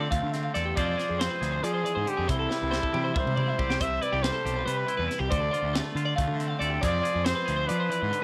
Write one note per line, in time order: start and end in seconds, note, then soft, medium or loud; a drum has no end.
0.00 0.73 D3 medium
0.00 0.33 C4 medium
0.00 0.11 D5 medium
0.11 0.20 D2 loud
0.11 0.74 A3 medium
0.11 0.32 F5 medium
0.11 kick loud
0.11 closed hi-hat loud
0.23 0.48 D3 medium
0.32 0.76 C4 medium
0.32 0.43 E5 medium
0.32 snare soft
0.32 closed hi-hat medium
0.44 0.54 F5 medium
0.54 0.73 E2 medium
0.54 0.74 A4 medium
0.54 0.66 D5 medium
0.54 snare soft
0.54 closed hi-hat medium
0.65 0.76 G4 medium
0.75 0.94 F2 loud
0.75 1.61 F3 medium
0.75 1.18 C4 medium
0.75 2.26 F4 medium
0.75 0.96 G#4 medium
0.75 4.28 C5 medium
0.75 1.22 D5 loud
0.75 0.99 D5 medium
0.75 kick loud
0.75 closed hi-hat loud
0.97 1.40 G#4 medium
0.97 1.09 C5 medium
0.97 snare soft
0.97 closed hi-hat medium
1.09 1.27 F2 medium
1.09 1.20 G#4 medium
1.19 2.49 C4 medium
1.19 1.30 C5 medium
1.19 1.65 C5 medium
1.19 snare loud
1.19 closed hi-hat loud
1.30 1.52 B4 medium
1.41 1.59 D2 medium
1.41 2.25 G#4 medium
1.41 snare soft
1.41 closed hi-hat medium
1.52 1.63 C5 medium
1.63 1.83 F3 medium
1.63 1.80 F3 medium
1.63 2.10 G#4 medium
1.63 1.73 D5 medium
1.63 closed hi-hat loud
1.74 1.85 C5 medium
1.83 2.05 E3 medium
1.83 1.95 D5 medium
1.83 closed hi-hat medium
1.95 2.05 G#2 medium
1.95 2.17 C5 medium
2.06 2.27 D3 medium
2.06 2.29 G4 medium
2.06 closed hi-hat medium
2.17 2.27 F2 medium
2.17 2.28 G#4 medium
2.27 2.46 C2 medium
2.27 3.78 C3 medium
2.27 3.20 E4 loud
2.27 2.39 C5 medium
2.27 kick loud
2.27 closed hi-hat medium
2.39 2.49 A4 medium
2.49 2.70 G3 medium
2.49 2.71 B4 medium
2.49 snare medium
2.62 2.79 C2 medium
2.70 2.92 G3 medium
2.70 2.82 C5 medium
2.70 snare medium
2.82 2.93 A4 medium
2.82 kick medium
2.92 3.11 C3 medium
2.92 3.13 G3 medium
2.92 3.04 G4 medium
2.92 mid tom medium
3.04 3.14 C5 medium
3.14 3.24 C2 loud
3.14 4.22 G3 medium
3.14 3.36 E5 medium
3.14 kick loud
3.14 mid tom medium
3.18 3.83 C5 loud
3.26 3.51 C3 medium
3.26 mid tom medium
3.36 3.79 E4 medium
3.36 3.48 D5 medium
3.36 mid tom medium
3.48 3.59 E5 medium
3.59 3.76 C2 medium
3.59 3.78 G4 medium
3.59 3.70 D5 medium
3.59 kick medium
3.70 3.80 G4 medium
3.70 snare medium
3.80 3.98 C2 loud
3.80 5.31 C3 medium
3.80 4.01 C5 medium
3.80 4.04 E5 loud
3.80 kick loud
3.80 closed hi-hat loud
4.01 4.13 E4 medium
4.01 4.13 B4 medium
4.01 4.24 D5 loud
4.01 closed hi-hat medium
4.12 4.30 C2 medium
4.12 4.23 G4 medium
4.12 4.44 G4 medium
4.22 4.64 G3 medium
4.22 4.32 B4 medium
4.22 4.67 C5 loud
4.22 snare loud
4.22 closed hi-hat loud
4.33 4.56 A4 medium
4.45 4.62 B1 loud
4.45 5.07 G4 medium
4.45 closed hi-hat medium
4.56 4.65 B4 medium
4.65 4.84 C3 medium
4.65 5.31 G3 medium
4.65 5.04 B4 medium
4.65 4.77 C5 medium
4.65 closed hi-hat loud
4.77 4.87 B4 medium
4.87 5.07 E4 medium
4.87 4.97 C5 medium
4.87 closed hi-hat medium
4.97 5.07 E2 medium
4.97 5.19 B4 medium
5.08 5.19 E4 medium
5.08 snare soft
5.08 closed hi-hat medium
5.19 5.29 C2 medium
5.19 5.31 G4 medium
5.19 5.30 G4 medium
5.30 5.48 D2 loud
5.30 6.80 D3 medium
5.30 5.41 C5 medium
5.30 5.76 D5 loud
5.30 kick loud
5.30 closed hi-hat loud
5.41 5.51 A4 medium
5.51 5.96 F4 medium
5.51 5.74 C5 medium
5.51 closed hi-hat medium
5.63 5.80 D2 medium
5.74 6.16 A3 medium
5.74 5.84 D5 medium
5.74 snare loud
5.74 closed hi-hat medium
5.84 5.95 B4 medium
5.95 6.12 D3 medium
5.95 6.80 F4 medium
5.95 6.05 A4 medium
5.95 closed hi-hat medium
6.05 6.16 D5 medium
6.16 6.27 D2 loud
6.16 6.80 A3 medium
6.16 6.37 F5 medium
6.16 kick loud
6.16 closed hi-hat medium
6.28 6.54 D3 medium
6.37 6.83 C4 medium
6.37 6.48 E5 medium
6.37 closed hi-hat medium
6.48 6.59 F5 medium
6.59 6.78 D2 medium
6.59 6.80 A4 medium
6.59 6.71 D5 medium
6.59 closed hi-hat medium
6.70 6.82 G4 medium
6.81 7.00 F2 loud
6.81 7.66 F3 medium
6.81 7.25 C4 medium
6.81 8.24 F4 medium
6.81 7.02 G#4 medium
6.81 7.02 D5 medium
6.81 7.27 D5 loud
6.81 kick loud
6.81 closed hi-hat loud
7.02 7.44 G#4 medium
7.02 7.13 C5 medium
7.02 closed hi-hat medium
7.13 7.32 F2 medium
7.13 7.24 G#4 medium
7.25 8.24 C4 medium
7.25 7.34 C5 medium
7.25 7.69 C5 loud
7.25 snare loud
7.25 closed hi-hat medium
7.35 7.56 B4 medium
7.46 7.65 D2 loud
7.46 8.24 G#4 medium
7.46 closed hi-hat medium
7.57 7.68 C5 medium
7.67 7.89 F3 medium
7.67 7.87 F3 medium
7.67 8.24 B4 loud
7.67 7.79 D5 medium
7.67 closed hi-hat loud
7.80 7.90 C5 medium
7.89 8.10 E3 medium
7.89 8.02 D5 medium
7.89 closed hi-hat medium
8.02 8.11 G#2 medium
8.02 8.23 C5 medium
8.11 8.24 D3 medium
8.11 closed hi-hat medium